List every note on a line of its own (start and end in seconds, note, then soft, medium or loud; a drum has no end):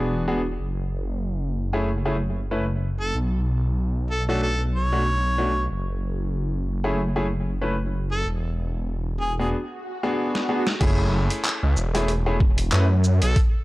0.00 0.57 E1 medium
0.00 0.24 B3 medium
0.00 0.24 D4 medium
0.00 0.24 F#4 medium
0.00 0.24 G#4 loud
0.28 0.40 B3 medium
0.28 0.40 D4 medium
0.28 0.40 F#4 medium
0.28 0.40 G#4 medium
0.60 3.12 F#1 medium
1.73 1.88 A3 medium
1.73 1.88 C#4 medium
1.73 1.88 E4 medium
1.73 1.88 G#4 medium
2.05 2.15 A3 medium
2.05 2.15 C#4 medium
2.05 2.15 E4 medium
2.05 2.15 G#4 medium
2.51 2.63 A3 medium
2.51 2.63 C#4 medium
2.51 2.63 E4 medium
2.51 2.63 B4 medium
3.00 3.15 A4 medium
3.15 5.68 B1 medium
4.11 4.22 A4 medium
4.29 4.44 A3 medium
4.29 4.44 C#4 medium
4.29 4.44 D4 medium
4.29 4.44 F#4 medium
4.29 4.38 A4 medium
4.42 4.61 A4 medium
4.75 5.65 C#5 medium
4.92 5.02 A3 medium
4.92 5.02 C#4 medium
4.92 5.02 D4 medium
4.92 5.02 F#4 medium
5.38 5.50 A3 medium
5.38 5.50 C#4 medium
5.38 5.50 D4 medium
5.38 5.50 F#4 medium
5.71 8.23 F#1 medium
6.84 6.99 A3 medium
6.84 6.99 C#4 medium
6.84 6.99 E4 medium
6.84 6.99 G#4 medium
7.16 7.25 A3 medium
7.16 7.25 C#4 medium
7.16 7.25 E4 medium
7.16 7.25 G#4 medium
7.61 7.74 A3 medium
7.61 7.74 C#4 medium
7.61 7.74 E4 medium
7.61 7.74 B4 medium
8.12 8.26 A4 medium
8.26 9.54 E1 medium
9.21 9.33 G#4 medium
9.39 9.54 B3 medium
9.39 9.54 D4 medium
9.39 9.54 F#4 medium
9.39 9.54 G#4 medium
9.39 9.49 G#4 medium
9.53 swell medium
10.03 10.46 B3 medium
10.03 10.46 D4 medium
10.03 10.46 F#4 medium
10.03 10.46 G#4 loud
10.35 snare soft
10.49 10.61 B3 medium
10.49 10.61 D4 medium
10.49 10.61 F#4 medium
10.49 10.61 G#4 medium
10.67 snare medium
10.81 11.28 F#1 loud
10.81 11.77 A3 loud
10.81 11.77 C#4 loud
10.81 11.77 E4 medium
10.81 11.77 G#4 loud
10.81 kick loud
10.81 closed hi-hat medium
10.81 crash loud
11.30 closed hi-hat medium
11.45 clap loud
11.45 closed hi-hat medium
11.63 11.75 C#2 loud
11.77 12.70 E1 loud
11.77 shaker medium
11.94 12.09 A3 medium
11.94 12.09 C#4 medium
11.94 12.09 E4 medium
11.94 12.09 G#4 loud
11.94 snare soft
11.94 closed hi-hat medium
12.08 closed hi-hat medium
12.26 12.36 A3 medium
12.26 12.36 C#4 medium
12.26 12.36 E4 medium
12.26 12.36 G#4 medium
12.40 kick loud
12.58 closed hi-hat medium
12.72 13.20 F#2 medium
12.72 12.84 A3 medium
12.72 12.84 C#4 medium
12.72 12.84 E4 medium
12.72 12.84 B4 medium
12.72 clap loud
12.72 closed hi-hat medium
13.04 shaker medium
13.22 13.34 B1 loud
13.22 13.37 A4 medium
13.22 closed hi-hat medium
13.36 kick loud
13.36 closed hi-hat medium